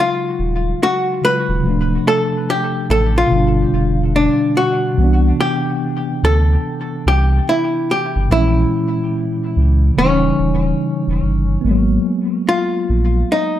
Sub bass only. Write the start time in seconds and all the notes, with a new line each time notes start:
0.39 D#1
1.49 D#1
1.65 D1
2.90 A1
3.31 G1
3.73 F1
4.98 C2
6.23 D2
7.06 C2
8.16 G1
8.31 A#1
9.57 C#2
9.98 D#1
10.39 D#1
11.07 E1
11.23 G1
11.64 G#1
12.89 A#1